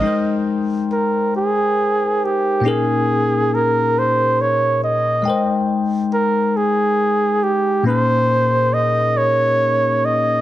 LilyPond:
<<
  \new Staff \with { instrumentName = "Flugelhorn" } { \time 6/8 \key aes \major \tempo 4. = 46 ees''8 r8 bes'8 aes'4 g'8 | aes'4 bes'8 c''8 des''8 ees''8~ | ees''8 r8 bes'8 aes'4 g'8 | c''4 ees''8 des''4 ees''8 | }
  \new Staff \with { instrumentName = "Tine electric piano" } { \time 6/8 \key aes \major <aes ees' bes' c'' g''>2. | <bes, bes des' ees' aes' bes'>2. | <aes ees' bes' c'' g''>2. | <bes, bes des' ees' aes' bes'>2. | }
>>